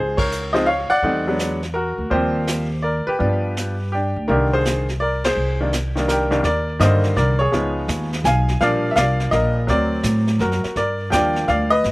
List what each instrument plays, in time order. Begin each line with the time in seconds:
Already playing: upright bass C#2, upright piano G#4 C5
0.17 upright piano A#4 C#5, kick, ride
0.31 hi-hat pedal
0.53 upright piano F3 G#3 C4 D#4 C5 D#5, snare
0.66 upright piano C#5 F5
0.90 upright piano D5 F#5, muted upright bass stroke
1.03 upright bass E2, upright piano G3 A3 C4 D#4, brush sweep, kick
1.27 upright piano F#3 G#3 B3 D4
1.39 snare, hi-hat pedal
1.63 snare
1.74 upright piano F#4 A#4
1.98 upright bass D2
2.10 upright bass D#2, upright piano F3 G3 A#3 C4 G4 C5, brush sweep, kick
2.47 snare, hi-hat pedal
2.82 upright piano A#4 D5
3.07 upright piano G4 B4, muted upright bass stroke
3.19 upright bass G2, upright piano F3 G3 B3 D4, brush sweep, kick
3.57 snare, hi-hat pedal
3.92 upright piano D4 G4
4.16 upright bass D2
4.28 upright bass C2, upright piano D3 D#3 A#3 D4 G4 A#4, brush sweep, kick
4.53 upright piano G#4 C5
4.65 snare, hi-hat pedal
4.89 snare
5.00 upright piano A#4 D5
5.24 upright piano G#4 C5, snare, ride
5.36 upright bass C2, brush sweep
5.60 upright piano D#3 G3 A#3 D4
5.73 snare, hi-hat pedal
5.95 upright piano D#3 G3 A#3 D4, snare
6.08 upright piano G4 A#4, snare, hi-hat pedal
6.31 upright piano C2 D#3 G3 A#3 D4, snare
6.44 upright bass D#2, upright piano A#4 D5, brush sweep, kick, snare
6.79 upright bass G2, upright piano D3 D#3 G3 A#3 C5 D#5, kick, snare, hi-hat pedal
7.03 snare
7.16 upright bass C2, upright piano A#4 D5, kick, snare
7.39 upright piano G#4 C#5
7.52 upright bass C#2, upright piano F3 G#3 B3 D#4, brush sweep, kick, snare
7.88 upright bass D#2, kick, snare, hi-hat pedal
8.13 snare
8.24 upright bass B1, upright piano F5 G#5, kick, snare, hi-hat pedal
8.48 snare
8.61 upright bass A#1, upright piano F3 G3 A#3 D4 D5 F5, brush sweep, kick, snare
8.91 upright piano E5
8.96 upright bass C2, upright piano D5 F5, kick, snare, hi-hat pedal
9.20 snare
9.31 upright bass A#1, upright piano A#4 D#5, kick, snare
9.67 upright bass D2, upright piano F#3 C4 A#4 D5, brush sweep, kick, snare
10.03 upright bass A2, kick, snare, hi-hat pedal
10.27 snare
10.39 upright bass F#2, upright piano F#4 A#4, kick, snare
10.52 snare
10.64 muted upright bass stroke, snare
10.76 upright bass G2, upright piano A#4 D5, brush sweep, kick, snare
11.10 upright bass D#2, upright piano F3 G3 A#3 D4 D5 G5, kick, snare, hi-hat pedal
11.36 snare
11.48 upright bass D2, upright piano D5 F5, kick, snare
11.70 upright piano B4 D#5
11.84 upright bass G1, brush sweep, kick, snare